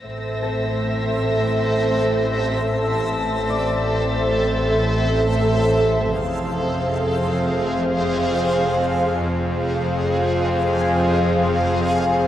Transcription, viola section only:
0.03 C4 A4
3.11 C4 A4
6.19 C4 G#4
9.27 C4 G#4

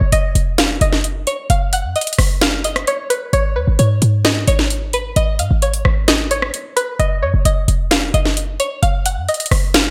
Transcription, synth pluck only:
0.12 D#5
0.58 F5
0.81 D#5
1.27 C#5
1.50 F5
1.73 F#5
1.96 D#5
2.41 F5
2.65 D#5
2.88 C#5
3.10 B4
3.33 C#5
3.56 B4
3.79 C#5
4.25 D#5
4.48 C#5
4.94 B4
5.16 D#5
5.39 F5
5.62 C#5
6.08 D#5
6.31 C#5
6.76 B4
6.99 D#5
7.22 C#5
7.45 D#5
7.91 F5
8.14 D#5
8.60 C#5
8.82 F5
9.06 F#5
9.29 D#5
9.74 F5

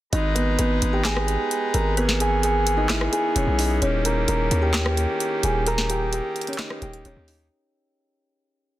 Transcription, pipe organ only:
0.13 G#3 D#4 B4 A#5
1.97 E3 B3 C#4 G#4
3.82 D#3 A#3 G4
5.67 D#4

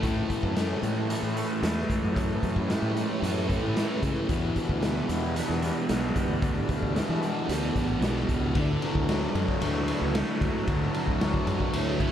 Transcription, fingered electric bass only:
0.03 A2
0.43 F#2
0.83 A2
1.23 A2
1.62 E2
2.02 F#2
2.43 F#2
2.82 A2
3.22 F#2
3.62 A2
4.03 C#3
4.29 E2
4.69 D2
5.09 E2
5.49 E2
5.90 B1
6.29 D2
6.69 D2
7.09 E3
7.49 D2
7.75 A1
8.01 B1
8.29 C#2
8.56 D2
8.95 D2
9.35 F#2
9.61 D2
10.01 C#2
10.41 D2
10.67 D2
11.08 D2
11.47 F#2
11.73 D2

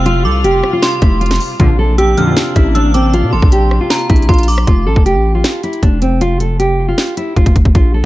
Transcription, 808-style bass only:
Already playing: F1
0.25 C2
0.44 F1
1.02 F1
1.60 A#1
2.56 A1
3.23 A#2
3.33 A1
3.42 A#1
4.10 A#1
4.29 A#1
4.67 F1
4.87 A1
4.96 F1
5.15 A1
5.83 F1
7.36 F1
7.46 F1
7.56 F1
7.65 F1
7.75 A#1

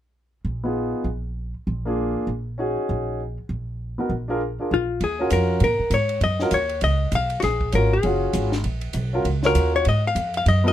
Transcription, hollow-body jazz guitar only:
4.74 F4
5.04 G#4
5.33 A#4
5.64 A#4
5.94 C#5
6.24 D#5
6.54 C#5
6.84 D#5
7.15 F5
7.40 F#4 G#4
7.75 A#4
7.93 G#4
9.46 A#4
9.76 C#5
9.89 D#5
10.07 F5
10.37 F5
10.48 D#5
10.68 D#5

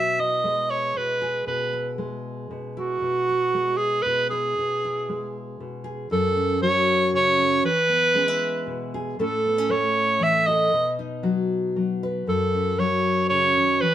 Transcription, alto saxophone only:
Already playing: E5
0.20 D#5
0.70 C#5
0.97 B4
1.47 B4
2.77 F#4
3.77 G#4
4.02 B4
4.30 G#4
6.12 A4
6.62 C#5
7.15 C#5
7.65 B4
9.19 A4
9.71 C#5
10.23 E5
10.47 D#5
12.29 A4
12.79 C#5
13.29 C#5
13.81 B4

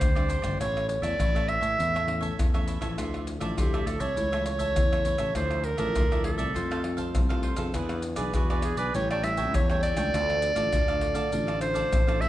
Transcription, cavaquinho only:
Already playing: G4 C5 D5
0.15 G4 C5 D5
0.28 D4 G4 C5 D5
0.42 G4 C5 D5
0.60 E4 A4 C#5 E5
0.89 muted cavaquinho stroke
1.02 A4 C#5 E5
1.19 E4 A4 C#5 E5
1.35 A4 C#5 E5
1.61 A4 C#5 E5
1.79 E4 A4 C#5 E5
1.95 A4 C#5 E5
2.07 muted cavaquinho stroke
2.21 A4 C#5 E5
2.54 A4 C#5 E5
2.67 E4 A4 C#5 E5
2.81 A4 C#5 E5
2.98 F4 A4 D5 E5
3.27 muted cavaquinho stroke
3.40 A4 D5 E5
3.57 F4 A4 D5 E5
3.74 A4 D5 E5
4.00 A4 D5 E5
4.16 E4 A4 C#5 E5
4.32 A4 C#5 E5
4.46 muted cavaquinho stroke
4.59 A4 C#5 E5
4.92 A4 C#5 E5
5.05 E4 A4 C#5 E5
5.18 A4 C#5 E5
5.35 F4 A4 D5 E5
5.65 muted cavaquinho stroke
5.77 A4 D5 E5
5.95 F4 A4 D5 E5
6.11 A4 D5 E5
6.38 A4 D5 E5
6.54 F4 A4 C5 F5
6.71 A4 C5 F5
6.84 muted cavaquinho stroke
6.97 A4 C5 F5
7.29 A4 C5 F5
7.42 F4 A4 C5 F5
7.56 A4 C5 F5
7.74 E4 G#4 B4 D5
8.03 muted cavaquinho stroke
8.16 G#4 B4 D5
8.35 E4 G#4 B4 D5
8.50 G#4 B4 D5
8.77 G#4 B4 D5
8.94 G4 A4 C#5 G5
9.11 A4 C#5 G5
9.23 muted cavaquinho stroke
9.37 A4 C#5 G5
9.70 A4 C#5 G5
9.83 G4 A4 C#5 G5
9.97 A4 C#5 G5
10.15 D4 A4 D5 F5
10.43 muted cavaquinho stroke
10.55 A4 D5 F5
10.73 D4 A4 D5 F5
10.88 A4 D5 F5
11.14 A4 D5 F5
11.32 D4 A4 D5 F5
11.47 A4 D5 F5
11.61 muted cavaquinho stroke
11.74 A4 D5 F5
12.07 A4 D5 F5
12.21 D4 A4 D5 F5

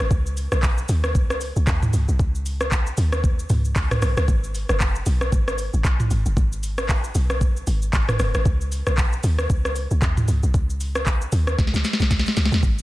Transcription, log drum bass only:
0.11 C#2
0.52 B1
0.89 D#2
1.15 C#2
1.56 C#2
1.67 D#2
1.93 C#2
2.08 B1
2.19 C#2
2.98 D#2
3.50 C#2
3.76 C#2
4.02 B1
4.17 C#2
4.28 G#1
4.69 F#1
5.06 B1
5.32 G#1
5.74 G#1
5.84 B1
6.11 G#1
6.26 F#1
6.37 G#1
7.15 B1
7.67 G#1
7.93 G#1
8.19 F#1
8.35 G#1
8.45 C#2
8.87 B1
9.24 D#2
9.50 C#2
9.91 C#2
10.02 D#2
10.28 C#2
10.43 B1
10.54 C#2
11.32 D#2
11.59 C#2
11.74 C#2
12.00 B1
12.11 C#2
12.37 C#2
12.52 D#2
12.63 G#1

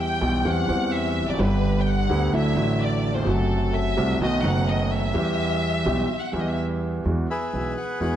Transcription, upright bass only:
Already playing: E2
0.21 B1
0.45 E2
0.69 E2
1.22 E1
1.27 F1
1.34 F#1
1.39 G1
2.09 D2
2.33 D2
2.56 A1
3.26 F#1
3.97 C2
4.20 B1
4.44 F#1
5.14 E2
5.85 B1
6.33 E2
7.05 E2
7.53 B1
8.00 E2

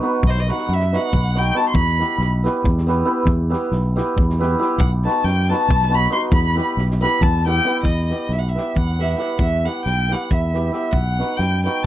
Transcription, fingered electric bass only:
0.23 B1
0.69 F#2
1.13 B1
1.74 E2
2.18 B1
2.64 E2
3.25 E2
3.72 B1
4.16 E2
4.78 B1
5.24 F#2
5.68 B1
6.32 E2
6.77 B1
7.21 E2
7.83 E2
8.29 B1
8.76 E2
9.39 E2
9.86 B1
10.32 E2
10.93 B1
11.39 F#2

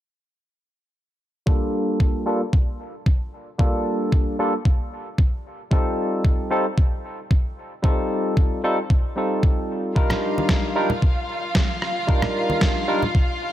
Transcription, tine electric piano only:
1.46 G3 A#3 D4 F4 A4
2.25 G3 A#3 D4 F4 A4
3.58 G3 A#3 D4 F4 A4
4.39 G3 A#3 D4 F4 A4
5.71 G3 C4 D#4 F4 A4
6.50 G3 C4 D#4 F4 A4
7.83 G3 C4 D#4 F4 A4
8.63 G3 C4 D#4 F4 A4
9.16 G3 C4 D#4 F4 A4
9.95 G3 D4 D#4 F4 A#4
10.75 G3 D4 D#4 F4 A#4
12.07 G3 D4 D#4 F4 A#4
12.88 G3 D4 D#4 F4 A#4

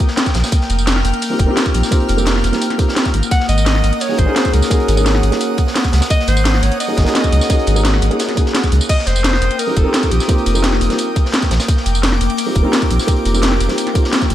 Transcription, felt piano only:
1.30 A#3 C4 D#4 F4 G4
1.46 A#3 C4 D#4 F4
1.50 G4
1.91 A#3 C4 D#4 F4 G4
2.17 A#3 C4 D#4 F4 G4
2.52 A#3 C4 D#4 F4 G4
2.78 A#3 C4 D#4 F4 G4
4.09 A#3 C#4 D#4 F#4 G#4
4.25 A#3 C#4 D#4 F#4
4.29 G#4
4.70 A#3 C#4 D#4 F#4 G#4
4.96 A#3 C#4 D#4 F#4 G#4
5.31 A#3 C#4 D#4 F#4 G#4
6.88 A#3 C#4 D#4 F#4 G#4
7.04 A#3 C#4 D#4 F#4
7.09 G#4
7.49 A#3 C#4 D#4 F#4 G#4
7.75 A#3 C#4 D#4 F#4 G#4
8.10 A#3 C#4 D#4 F#4 G#4
8.35 A#3 C#4 D#4 F#4
8.39 G#4
9.67 A#3 C4 D#4 F4 G4
9.83 A#3 C4 D#4 F4
9.88 G4
10.28 A#3 C4 D#4 F4 G4
10.54 A#3 C4 D#4 F4 G4
10.89 A#3 C4 D#4 F4 G4
12.46 A#3 C4 D#4 F4 G4
12.62 A#3 C4 D#4 F4
12.67 G4
13.07 A#3 C4 D#4 F4 G4
13.33 A#3 C4 D#4 F4 G4
13.68 A#3 C4 D#4 F4 G4
13.94 A#3 C4 D#4 F4 G4

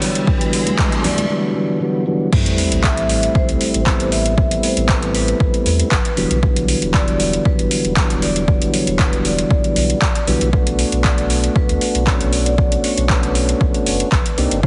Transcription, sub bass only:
2.72 A1
3.49 C2
3.74 A1
4.00 A1
4.77 A1
5.40 A1
5.66 E2
5.92 A1
6.17 E1
6.31 B1
6.82 E1
7.59 G1
7.85 E1
8.10 E1
8.87 E1
9.51 E1
9.76 B1
10.28 B1
10.41 B1
10.92 B1
11.69 D2
11.95 B1
12.21 B1
12.97 B1
13.61 B1
13.86 F#1
14.12 B1
14.38 C2
14.51 G1

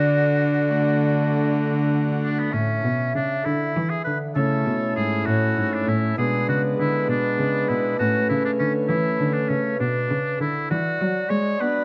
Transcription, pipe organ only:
Already playing: D3
0.69 A3 D4 F#4
2.54 A2
2.84 B2
3.15 C#3
3.44 D3
3.75 E3
4.06 D3
4.36 C#3 A3 C#4 E4
4.66 B2
4.96 G#2
5.26 A2
5.57 G#2
5.87 A2
6.17 B2 G#3 B3 D4
6.48 C#3
6.78 D3
7.09 B2
7.39 C#3
7.69 B2
7.99 A2 A3 C#4
8.29 C#3
8.60 D3
8.90 E3
9.19 D3
9.50 C#3
9.80 B2
10.10 C#3
10.40 D3
10.71 E3
11.00 F#3
11.30 G#3
11.60 B3 D4 F#4

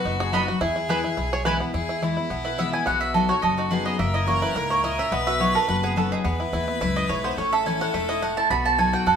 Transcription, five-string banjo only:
Already playing: B3 B4
0.05 D#4
0.20 G#4
0.33 F#4
0.48 F#4
0.61 E4
0.76 E4
0.90 B4
1.04 E4
1.17 E4
1.33 C#5
1.45 B4
1.60 B3
1.74 E4
1.89 E4
2.03 E4
2.17 E4
2.30 B3
2.45 E4
2.59 B3
2.73 E4
2.86 B3
3.14 A4
3.29 F#4
3.44 A4
3.58 D#4
3.72 F#4
3.86 B3
3.99 A#3
4.14 E4
4.28 A#3
4.42 E4
4.56 E4
4.70 A#3
4.84 E4
4.99 C#4
5.12 B3
5.27 F#4
5.40 B3
5.55 A4
5.68 F#4
5.84 B3
5.97 F#4
6.12 D#4
6.24 B3
6.40 E4
6.53 E4
6.68 E4
6.81 E4
6.97 E4
7.10 E4
7.24 B3
7.38 C#4
7.53 A4
7.67 E4
7.81 C#4
7.94 A3
8.09 E4
8.22 A3
8.37 E4
8.51 B3
8.79 A4
8.93 F#4
9.07 A4

